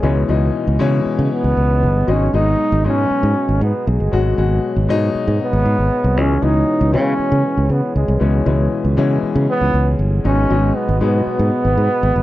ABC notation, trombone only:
X:1
M:4/4
L:1/8
Q:1/4=118
K:C#m
V:1 name="Trombone"
G, z4 B,3 | C D2 C3 B, G,- | G, z4 B,3 | C D2 C3 B, G,- |
G, z4 B,2 z | C2 B, B,4- B, |]